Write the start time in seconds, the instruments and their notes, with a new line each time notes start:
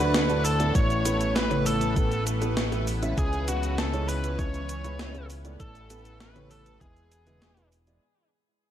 Already playing: analog synth bass D2, analog synth pad F#3 A3 D4 E4 F#5, lead electric guitar B4, digital synth lead B5
0.00 grand piano D3 A3 D4 F#4 D5
0.14 snare, closed hi-hat, shaker
0.30 grand piano D3 A3 D4 F#4 D5, closed hi-hat, shaker
0.45 lead electric guitar A4, digital synth lead A5, open hi-hat, shaker
0.60 grand piano A2 A3 B3 E4 D5, closed hi-hat, shaker
0.75 analog synth bass A1, analog synth pad E3 A3 B3 B4, lead electric guitar C#5, digital synth lead C#6, kick, closed hi-hat, shaker
0.90 closed hi-hat, shaker
1.05 grand piano A2 A3 B3 E4 B4, closed hi-hat, shaker
1.21 closed hi-hat, shaker
1.36 lead electric guitar B4, digital synth lead B5, snare, closed hi-hat, shaker
1.51 grand piano A2 A3 B3 E4 C#5, closed hi-hat, mid tom, shaker
1.66 lead electric guitar A4, digital synth lead A5, open hi-hat, mid tom, shaker
1.81 closed hi-hat, shaker
1.96 grand piano A2 A3 B3 E4 B4, kick, closed hi-hat, shaker
2.12 closed hi-hat, shaker
2.27 closed hi-hat, shaker
2.42 grand piano A2 A3 B3 E4 B4, closed hi-hat, shaker
2.57 snare, closed hi-hat, shaker
2.72 grand piano A2 A3 B3 E4 B4, snare, closed hi-hat, shaker
2.87 open hi-hat, shaker
3.02 grand piano C#3 G#3 C#4 E4 E5, closed hi-hat, shaker
3.18 analog synth bass C#2, analog synth pad E3 C#4 E4, lead electric guitar G#4, digital synth lead G#5, kick, closed hi-hat, shaker
3.33 closed hi-hat, shaker
3.48 grand piano C#3 G#3 C#4 E4 B4, lead electric guitar F#4, digital synth lead F#5, closed hi-hat, shaker
3.63 closed hi-hat, shaker
3.78 lead electric guitar A4, digital synth lead A5, snare, closed hi-hat, shaker
3.93 grand piano C#3 G#3 C#4 E4 C#5, closed hi-hat, shaker
4.08 lead electric guitar B4, digital synth lead B5, open hi-hat, shaker
4.24 closed hi-hat, shaker
4.38 grand piano C#3 G#3 C#4 E4 B4, lead electric guitar C#5, digital synth lead C#6, kick, closed hi-hat, shaker
4.54 closed hi-hat, shaker
4.69 closed hi-hat, shaker
4.84 grand piano C#3 G#3 C#4 E4 B4, closed hi-hat, shaker
4.99 snare, closed hi-hat, shaker
5.15 grand piano C#3 G#3 C#4 E4 B4, closed hi-hat, shaker
5.30 open hi-hat, shaker
5.45 grand piano A2 A3 B3 E4 D5, closed hi-hat, shaker
5.60 analog synth bass A1, analog synth pad E3 A3 A4 B4, lead electric guitar A4, digital synth lead A5, kick, closed hi-hat, shaker
5.75 closed hi-hat, shaker
5.90 grand piano A2 A3 B3 E4 B4, closed hi-hat, shaker
6.05 closed hi-hat, shaker
6.20 lead electric guitar B4, digital synth lead B5, snare, closed hi-hat, shaker
6.36 grand piano A2 A3 B3 E4 C#5, closed hi-hat, mid tom, shaker
6.51 lead electric guitar A4, digital synth lead A5, open hi-hat, mid tom, shaker
6.66 closed hi-hat, shaker
6.81 analog synth bass E1, grand piano G#3 B3 E4 B4, analog synth pad G#3 G#4, lead electric guitar G#4, digital synth lead G#5, kick, closed hi-hat, shaker
6.96 closed hi-hat, shaker
7.12 closed hi-hat, shaker
7.27 grand piano G#3 B3 E4 B4, closed hi-hat, mid tom, shaker
7.42 snare, closed hi-hat, shaker
7.57 grand piano G#3 B3 E4 B4, snare, closed hi-hat, shaker
7.72 open hi-hat, shaker
7.87 grand piano G#3 B3 E4 D5, closed hi-hat, shaker